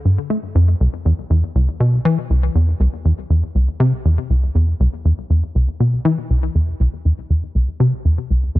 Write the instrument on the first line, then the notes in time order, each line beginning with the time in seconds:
analog synth bass
0.05 G2
0.30 A3
0.55 F2
0.80 C2
1.05 E2
1.30 E2
1.55 C2
1.80 B2
2.05 E3
2.30 C2
2.55 E2
2.80 C2
3.05 E2
3.30 E2
3.55 C2
3.80 C3
4.05 E2
4.30 C2
4.55 E2
4.80 C2
5.05 E2
5.30 E2
5.55 C2
5.80 B2
6.05 E3
6.30 C2
6.55 E2
6.80 C2
7.05 E2
7.30 E2
7.55 C2
7.80 C3
8.05 E2
8.30 C2
8.55 E2